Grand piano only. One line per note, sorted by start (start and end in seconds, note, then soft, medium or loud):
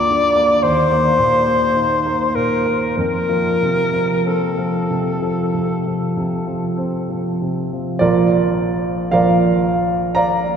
0.00 0.60 D2 soft
0.00 0.10 D3 soft
0.00 0.35 A#3 soft
0.00 0.66 F4 soft
0.10 0.53 D3 soft
0.35 0.63 A#3 soft
0.63 2.94 D#2 soft
0.92 1.36 A#3 soft
1.19 1.65 A#2 soft
1.47 1.94 A#3 soft
1.76 2.24 D#4 soft
2.05 2.54 A#3 soft
2.36 2.86 A#2 soft
2.66 2.98 A#3 soft
2.97 5.49 F2 soft
3.29 3.81 F3 soft
3.62 4.14 C3 soft
3.93 4.45 F3 soft
4.25 4.77 C4 soft
4.58 5.09 F3 soft
4.90 5.41 C3 soft
5.22 5.73 F3 soft
5.54 6.04 C3 soft
5.86 6.36 F3 soft
6.17 6.67 C3 soft
6.47 6.97 F3 soft
6.77 7.28 C4 soft
7.10 7.60 F3 soft
7.42 7.90 C3 soft
7.72 7.99 F3 soft
7.99 9.08 A#1 soft
7.99 9.08 F3 soft
7.99 9.08 A#3 soft
7.99 9.08 F4 medium
7.99 9.08 A#4 medium
7.99 9.11 D5 medium
9.11 10.57 A#1 soft
9.11 10.57 F3 soft
9.11 10.57 A#3 soft
9.11 10.57 F4 soft
9.11 10.13 A#4 medium
9.11 10.13 D5 medium
9.11 10.15 F5 medium
10.15 10.57 D5 medium
10.15 10.57 F5 medium
10.15 10.57 A#5 medium